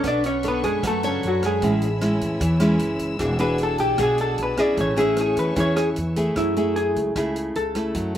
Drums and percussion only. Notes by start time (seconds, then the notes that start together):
0.04 kick, cross-stick, closed hi-hat
0.24 closed hi-hat
0.43 closed hi-hat
0.63 kick, closed hi-hat
0.83 kick, cross-stick, closed hi-hat
1.03 closed hi-hat
1.23 closed hi-hat
1.42 kick, cross-stick, closed hi-hat
1.62 kick, closed hi-hat
1.82 closed hi-hat
2.01 cross-stick, closed hi-hat
2.21 kick, closed hi-hat
2.41 kick, closed hi-hat
2.60 cross-stick, closed hi-hat
2.79 closed hi-hat
2.99 kick, closed hi-hat
3.19 kick, cross-stick, closed hi-hat
3.39 closed hi-hat
3.58 closed hi-hat
3.78 kick, closed hi-hat
3.98 kick, cross-stick, closed hi-hat
4.18 closed hi-hat
4.38 closed hi-hat
4.57 kick, cross-stick, closed hi-hat
4.77 kick, closed hi-hat
4.97 closed hi-hat
5.16 cross-stick, closed hi-hat
5.37 kick, closed hi-hat
5.56 kick, closed hi-hat
5.76 cross-stick, closed hi-hat
5.96 closed hi-hat
6.16 kick, closed hi-hat
6.36 kick, cross-stick, closed hi-hat
6.56 closed hi-hat
6.76 closed hi-hat
6.96 kick, closed hi-hat
7.16 kick, cross-stick, closed hi-hat
7.36 closed hi-hat
7.55 closed hi-hat
7.75 kick, cross-stick, closed hi-hat
7.95 kick, closed hi-hat